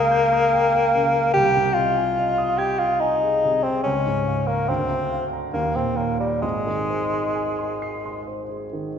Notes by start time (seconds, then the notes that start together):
Already playing: C#2 C#3 A#3 D#5 G5 A#5 D#6
0.11 G6
0.33 D#6
0.53 G5
0.74 A#4
0.95 C#3
1.16 A#4
1.34 C2 G4
1.57 C3
1.74 F4 D#5
1.97 G#5
2.19 D#5
2.38 D#6
2.58 G4 G#6
2.79 F4 D#6
3.00 D#4 G#5
3.24 G#4
3.45 C3
3.63 C4 G#4
3.83 C#2 C#4
4.06 G#2
4.27 F5
4.47 A#3 A#5
4.68 D2 C4
4.91 D3
5.12 F5
5.33 A#5
5.53 D#2 A#3
5.75 A#2 C4
5.96 A#3 C#5
6.20 G3 A#5
6.41 G#1 G#2 G#3
6.67 D#3
6.90 C5
7.13 C6
7.35 G#5
7.59 C6
7.82 C7
8.06 C6
8.28 C5
8.49 G#4
8.73 D#3